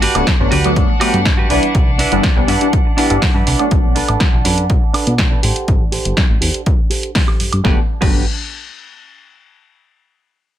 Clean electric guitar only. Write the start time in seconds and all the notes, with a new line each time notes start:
0.02 F#4 G4 B4
0.51 F#4 G4 B4
0.88 muted clean electric guitar stroke
1.00 F#4 G4 B4
1.37 F#4 G4 B4
1.49 D4 E4 B4
1.99 D4 E4 B4
2.48 D4 E4 B4
2.85 muted clean electric guitar stroke
2.97 D4 E4 B4
3.34 D4 E4 B4
3.95 D4 A4 B4
4.44 D4 A4 B4
4.82 muted clean electric guitar stroke
4.93 D4 A4 B4
5.31 D4 A4 B4
5.43 G4 A4 C5
5.92 G4 A4 C5
6.41 G4 A4 C5
6.78 muted clean electric guitar stroke
6.90 G4 A4 C5
7.27 G4 A4 C5
7.64 F#4 G4 B4
8.02 F#4 G4 B4